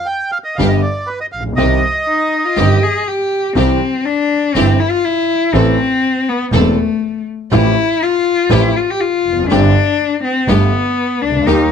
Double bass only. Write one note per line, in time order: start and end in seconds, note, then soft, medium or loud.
0.59 0.80 G1 medium
1.33 1.57 A#1 soft
1.57 1.79 C2 medium
2.57 2.78 G1 medium
3.55 3.77 C2 medium
4.55 4.77 G1 medium
5.54 5.75 A1 medium
6.52 6.74 E1 medium
7.52 7.73 A1 medium
8.50 8.71 A1 medium
9.25 9.49 F1 soft
9.50 9.70 G1 medium
10.48 10.69 G1 medium
11.23 11.46 C#2 soft
11.47 11.68 D#2 medium